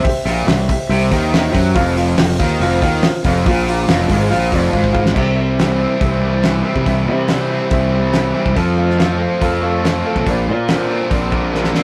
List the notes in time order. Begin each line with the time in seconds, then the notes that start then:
0.03 G4 C5 E5, muted distorted electric guitar stroke, muted fingered electric bass stroke, muted overdriven electric guitar stroke, kick, open hi-hat
0.24 A#1 A#2 G4 C5 E5, open hi-hat
0.47 C2 C3 G4 C5 E5, snare, open hi-hat
0.69 G4 C5 E5, kick, open hi-hat
0.89 C2 C3 G4 C5 E5, open hi-hat
1.11 D#2 D#3 G4 C5 E5, kick, open hi-hat
1.32 G4 C5 E5, snare, open hi-hat
1.53 F#2 F#3 G4 C5 E5, kick, open hi-hat
1.75 F1 F2 F4 C5 F5, kick, open hi-hat
1.97 F4 C5 F5, open hi-hat
2.17 F1 F2 F4 C5 G5, snare, open hi-hat
2.39 D#2 D#3 F4 C5 F5, kick, open hi-hat
2.60 F1 F2 F4 C5 F5, open hi-hat
2.82 D#2 D#3 F4 C5 F5, kick, open hi-hat
3.02 F4 C5 F5, muted fingered electric bass stroke, muted distorted electric guitar stroke, muted overdriven electric guitar stroke, snare, open hi-hat
3.24 F1 F2 F4 C5 F5, kick, open hi-hat
3.46 A#1 A#2 F4 C5 F5, kick, open hi-hat
3.68 F4 C5 F5, open hi-hat
3.88 F1 F2 F4 C5 F5, snare, open hi-hat
4.09 G#1 G#2 F4 C5 F5, kick, open hi-hat
4.30 A#1 A#2 F4 C5 F5, open hi-hat
4.52 F1 F2 F4 C5 D5, kick, open hi-hat
4.72 G#1 G#2 F4 C5 F5, kick
4.84 kick
4.93 F4 C5 F5, kick
5.06 snare
5.14 C2 C3 G4 C5 E5, kick, crash
5.36 G3 G4 C5 E5
5.58 E3 C4 G4 C5 E5, snare, open hi-hat
5.79 C4 E4 G4 C5 E5
6.00 C2 E3 C4 G4 C5 E5, kick, open hi-hat
6.22 G3 G4 C5 E5
6.43 E3 G4 C5 E5, snare, open hi-hat
6.65 G3 C4 G4 C5 E5
6.76 C3, kick
6.86 C2 C3 G4 C5 E5, kick, open hi-hat
7.06 C3 G3 G4 C5 E5
7.28 E3 C4 G4 C5 D5, snare, open hi-hat
7.50 C4 E4 G4 C5 E5
7.71 C2 E3 C4 G4 C5 E5, kick, open hi-hat
7.93 G3 G4 C5 E5
8.13 E3 G4 C5 E5, snare, open hi-hat
8.35 G3 C4 G4 C5 E5
8.46 C2, kick
8.55 F2 F3 A4 C5 F5, kick, open hi-hat
8.77 A3 A4 C5 F5
8.90 snare
8.99 F3 C4 A4 C5 F5, snare, open hi-hat
9.19 C4 F4 A4 C5 F5
9.40 F2 F3 C4 A4 C5 F5, kick, open hi-hat
9.62 A3 A4 C5 F5
9.84 F3 A4 C5 F5, snare, open hi-hat
10.05 A3 C4 A4 C5 F5
10.16 B1, kick
10.26 A#1 A#2 A#4 C5 D5, kick, open hi-hat
10.47 A#2 A#3 A#4 C5 D5
10.68 D3 C4 A#4 C5 D5, snare, open hi-hat
10.90 C4 F4 A#4 C5 D5
11.10 A#1 D3 C4 A#4 C5 D5, kick, open hi-hat
11.32 A#3 A#4 C5 D5, kick
11.53 D3 A#4 C5 D5, snare
11.64 snare
11.73 A#3 C4 A#4 C5 D5, snare